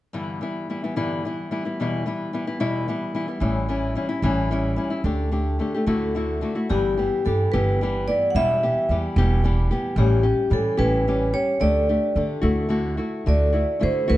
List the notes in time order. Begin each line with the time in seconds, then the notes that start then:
0.13 G2 D3 E3 G3 B3 E4
0.41 E3 G3 B3 E4
0.70 E3 G3 B3 E4
0.84 E3 G3 B3 E4
0.96 G2 D3 E3 G3 B3 E4
1.25 E3 G3 B3 E4
1.51 E3 G3 B3 E4
1.65 E3 G3 B3 E4
1.80 E2 B2 E3 G3 B3 E4
2.06 E3 G3 B3 E4
2.33 E3 G3 B3 E4
2.47 E3 G3 B3 E4
2.60 E2 B2 E3 G3 B3 E4
2.88 E3 G3 B3 E4
3.15 E3 G3 B3 E4
3.28 E3 G3 B3 E4
3.40 A1 A2 E3 G3 C#4 E4
3.69 E3 G3 C#4 E4
3.95 E3 G3 C#4 E4
4.09 G3 C#4 E4
4.22 A1 A2 E3 G3 C#4 E4
4.51 E3 G3 C#4 E4
4.76 E3 G3 C#4 E4
4.90 G3 C#4 E4
5.04 D2 D3 A3 D4 G4
5.31 D3 A3 D4 G4
5.59 D3 A3 D4 G4
5.74 A3 D4 G4
5.86 D2 D3 A3 E4 F#4
6.15 D3 A3 E4 F#4
6.41 D3 A3 E4 F#4
6.55 A3 E4 F#4
6.69 G1 G2 D3 E3 G3 B3 G4
6.97 E3 G3 B3 G4
7.25 G2 E3 G3 B3 G4 A4
7.52 G1 G2 D3 E3 G3 B3 G4 B4
7.81 E3 G3 B3 G4
8.08 E3 G3 B3 G4 D5
8.30 F#5
8.35 E1 E2 B2 E3 G3 B3 G4 E5
8.63 E3 G3 B3 G4
8.89 E2 E3 G3 B3 G4
9.16 E1 E2 B2 E3 G3 B3 G4
9.44 E3 G3 B3 G4
9.71 E3 G3 B3 G4
9.96 A1 A2 E3 G3 C#4 G4
10.23 G3 C#4 G4
10.50 A2 E3 G3 C#4 G4 A4
10.77 A1 A2 E3 G3 C#4 G4 B4
11.08 E3 G3 C#4 G4
11.33 G3 C#4 G4 C#5
11.60 D2 D3 A3 D4 G4 D5
11.89 A3 D4 G4
12.16 D3 A3 D4 G4
12.42 D2 D3 A3 E4 F#4
12.69 D3 A3 E4 F#4
12.97 A3 E4 F#4
13.26 D2 D3 A3 E4 F#4 D5
13.53 A3 E4 F#4
13.80 D3 A3 E4 F#4 C5
14.08 D2 D3 A3 E4 F#4 B4